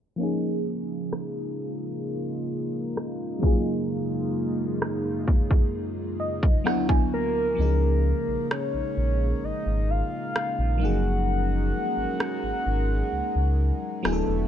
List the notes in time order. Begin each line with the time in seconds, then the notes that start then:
0.16 C#3 F3 G#3 A#3 C#4 D#4 F4
0.21 D#4 G#4
1.13 cross-stick
2.97 cross-stick
3.39 F#2 F#3 A#3 D#4, kick
3.45 F4 G#4
4.82 cross-stick
5.28 kick
5.51 kick
6.20 D#5
6.43 kick
6.64 D2 D3 F#3 B3 D4 E4 F#4 F#5, cross-stick
6.89 G#5, kick
7.14 A#4
7.55 C#2 C#3 F3 G#3 A#3 C#4 D#4
7.60 D#4 G#4
8.28 A#1
8.51 C#5, cross-stick
8.74 A#1
8.97 A#1
9.43 G#1 D#5
9.66 G#1
9.90 F5
10.36 cross-stick
10.59 A#1
10.78 F#3 G#3 A#3 C#4 D#4 G#4 A#4
10.82 F#1 F3 G#4 F#5
11.97 G#1
12.20 cross-stick
12.43 G#1
12.66 G#1
13.12 C#2
13.36 C#2
14.03 D1 D3 F#3 A3 B3 D4 E4 F#4 G#4, cross-stick
14.13 A4
14.28 E1